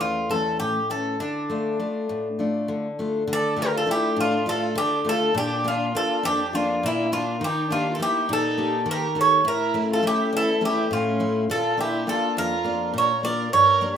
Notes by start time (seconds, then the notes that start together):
Already playing: E3 A3 C#4
0.00 E2 F4
0.29 E3 A3 C#4 A4
0.60 A2 G4
0.90 E3 A3 C#4 A4
1.20 D3 D4
1.50 A3 D4 F4
1.79 A3 D4 F4
2.09 A2
2.39 A3 D4 F4
2.68 D3
2.99 A3 D4 F4
3.27 D3
3.32 A4 D5
3.56 A3 D4 F4
3.61 G4 A#4
3.75 F4 A4
3.86 A3 D4 E4 F4
3.91 G4
4.16 A2 D4
4.20 F4
4.46 A3 D4 F4 A4
4.75 D3 D4 G4
5.05 A3 D4 F4
5.09 A4
5.34 A#2 D4 G4
5.64 A#3 D4 F4
5.95 A#3 D4 F4 A4
6.23 F2 D4 G4
6.53 A#3 D4 F4
6.83 A#2 A#3 E4
7.12 A#3 D4 F4
7.41 D#3 D#4 G4
7.69 A#3 D4 D#4 F4 G4
7.91 F4 A4
7.99 A#3 D#4 E4 G4
8.29 A#2 D#4
8.33 A4
8.58 A#3 D#4 G4
8.86 D#3 G4
8.91 A#4
9.15 A#3 D#4 G4 A4
9.21 C#5
9.45 A2 E4 A#4
9.74 A3 C#4 E4
9.93 F4 A4
10.03 A3 C#4 E4
10.07 G4
10.33 E2 E4
10.37 A4
10.61 A3 C#4 E4
10.65 G4
10.91 A2 C#4 F4
11.20 A3 C#4 E4
11.50 A#2 F4 A4
11.77 A#3 D4 F4 G4
11.82 E4
12.07 A#3 D4 F4 A4
12.37 F2 F4 A#4
12.64 A#3 D4 F4
12.94 A#2 A#4
12.98 C#5
13.23 A#3 D4 F4 A#4 D5
13.51 G2 A#4 C#5
13.81 G3 A#3 D4